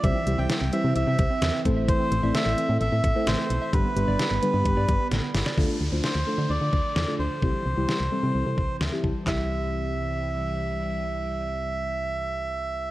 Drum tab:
HH |x-x-x-x-x-x-x-x-|x-x-x-x-x-x-x-x-|x-x-x-x-x-x-x-o-|----------------|
CP |----------------|----------------|----------------|----------------|
SD |----o-------o---|----o-------o---|----o-------o-oo|----o-------o---|
BD |o---------o---o-|o---------o-----|o-------o-o-----|o---------o-----|

HH |----------------|----------------|----------------|
CP |----------------|x---------------|----------------|
SD |----o-------o---|o---------------|----------------|
BD |o---------o---o-|o---------------|----------------|